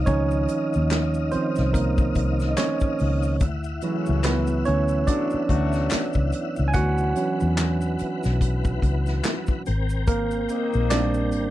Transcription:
Already playing: tine electric piano D#4 D#5, tonewheel organ D#4 D#5 F5
0.06 fingered electric bass C#2, tine electric piano D#3 F3 C#4 D#4 C#5, kick, closed hi-hat, maracas
0.31 maracas
0.48 closed hi-hat, maracas
0.73 fingered electric bass D#2, maracas
0.90 finger snap, snare, clap, closed hi-hat, maracas
1.14 maracas
1.31 tine electric piano D#3 F3 C4 C5, muted fingered electric bass stroke, closed hi-hat, maracas
1.56 fingered electric bass C2, snare, maracas
1.73 tine electric piano A#3 A#4, kick, closed hi-hat, maracas
1.98 kick, maracas
2.15 fingered electric bass C2, kick, closed hi-hat, maracas
2.40 snare, maracas
2.51 tine electric piano D#5
2.57 tine electric piano C#4 C#5, finger snap, snare, clap, closed hi-hat, maracas
2.80 kick, maracas
2.99 fingered electric bass C#2, open hi-hat, maracas
3.23 maracas
3.40 fingered electric bass D2, tonewheel organ E4 E5 F#5, kick, closed hi-hat, maracas
3.64 maracas
3.82 horn section C#3 F#3 A3 C#4, tine electric piano E3 F#3 E4, closed hi-hat, maracas
4.06 fingered electric bass C#2, maracas
4.23 tine electric piano B3 B4, finger snap, snare, clap, closed hi-hat, maracas
4.47 maracas
4.65 fingered electric bass D2, tine electric piano C#4 C#5, closed hi-hat, maracas
4.88 maracas
5.07 horn section D3 F#3 A3 D4, tine electric piano D4 D5, kick, closed hi-hat, maracas
5.30 muted fingered electric bass stroke, maracas
5.49 fingered electric bass D2, horn section F#3 A3 C#4 F#4, kick, closed hi-hat
5.73 snare, maracas
5.90 finger snap, muted fingered electric bass stroke, snare, clap, closed hi-hat, maracas
6.13 fingered electric bass C#2, kick, maracas
6.32 closed hi-hat, maracas
6.56 fingered electric bass C#2, maracas
6.68 tine electric piano G#5
6.73 fingered electric bass D2, tine electric piano F#4 F#5, tonewheel organ B4, kick, closed hi-hat, maracas
6.98 maracas
7.15 tine electric piano E3 F#3 C#4, closed hi-hat, maracas
7.40 fingered electric bass E2, maracas
7.57 finger snap, snare, clap, closed hi-hat, maracas
7.81 maracas
7.99 muted fingered electric bass stroke, closed hi-hat, maracas
8.23 fingered electric bass B1, snare, maracas
8.41 kick, closed hi-hat, maracas
8.65 kick, maracas
8.82 fingered electric bass C#2, kick, closed hi-hat
9.06 snare, maracas
9.24 finger snap, snare, clap, closed hi-hat, maracas
9.47 kick, maracas
9.66 fingered electric bass G#1, tonewheel organ C4 A#4 G5, closed hi-hat, maracas
9.89 maracas
10.07 tine electric piano A#3 A#4, kick, closed hi-hat, maracas
10.31 maracas
10.49 horn section D#3 A#3 C4 D#4, closed hi-hat, maracas
10.73 fingered electric bass A#1, maracas
10.90 tine electric piano G3 A#3 C4 D4 D5, finger snap, snare, clap, closed hi-hat, maracas
11.14 maracas
11.32 fingered electric bass G#1, closed hi-hat, maracas

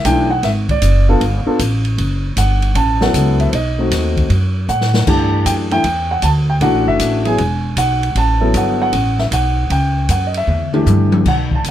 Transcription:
0.05 upright bass B1, grand piano E3 A3 D4 E4 G5, kick, hi-hat pedal, ride
0.30 grand piano F#5
0.43 upright bass G#1, grand piano E5, kick, snare, ride
0.69 grand piano D5, kick, ride
0.82 upright bass F#1, kick, hi-hat pedal, ride
1.09 grand piano B3 D4 F4 A4 F5
1.20 upright bass G1, kick, ride
1.46 grand piano B3 D4 F4 A4, muted upright bass stroke
1.59 upright bass A1, kick, hi-hat pedal, ride
1.85 ride
1.98 upright bass F#1, kick, ride
2.36 upright bass G1, grand piano F#5, kick, hi-hat pedal, ride
2.62 ride
2.75 upright bass A1, grand piano A5, kick, ride
3.01 grand piano F#3 B3 E4 A4 F#5, snare
3.14 upright bass C#2, kick, hi-hat pedal, ride
3.40 grand piano E5, ride
3.49 upright bass B1, grand piano C5, kick, ride
3.55 grand piano D#5
3.79 grand piano A3 C4 D#4 F#4
3.91 upright bass D#2, kick, snare, hi-hat pedal, ride
4.17 kick, ride
4.29 upright bass F#2, kick, ride
4.68 upright bass A2, grand piano F#5, hi-hat pedal
4.81 snare
4.94 snare
5.07 upright bass G2, grand piano E3 A3 D4 G4 A5, kick, crash
5.45 upright bass F#2, grand piano G5, kick, hi-hat pedal, ride
5.71 grand piano E3 A3 D4 E4 G5, ride
5.84 upright bass E2, kick, ride
6.11 grand piano F#5
6.22 upright bass D2, grand piano A5, kick, hi-hat pedal, ride
6.50 grand piano G5
6.61 upright bass B1, grand piano E3 A3 D4 F#4 F#5, kick, ride
6.74 upright bass A1
6.86 upright bass F#1, grand piano E5
6.99 upright bass A1, kick, hi-hat pedal, ride
7.25 grand piano F#3 B3 E4 G#4 G#5, ride
7.38 upright bass E1, kick, ride
7.76 upright bass B1, grand piano F#5, kick, hi-hat pedal, ride
8.03 ride
8.15 upright bass A1, grand piano A5, kick, ride
8.41 grand piano F#3 B3 E4 A4
8.54 upright bass G1, grand piano F#5, kick, hi-hat pedal, ride
8.82 grand piano F#5
8.93 upright bass A1, kick, ride
9.18 grand piano E5, snare
9.31 upright bass B1, grand piano F#5, kick, hi-hat pedal, ride
9.70 upright bass C#2, grand piano G5, kick, ride
10.09 upright bass F#2, grand piano F#5, kick, hi-hat pedal, ride
10.27 grand piano D#5
10.34 grand piano E5, ride
10.47 upright bass E2, mid tom
10.73 grand piano E3 A3 D4 G4, mid tom
10.86 upright bass G2, hi-hat pedal, high tom
11.12 high tom
11.25 upright bass B1, grand piano F#5, kick, crash
11.51 grand piano A5, kick
11.64 upright bass C#2, kick, hi-hat pedal, ride

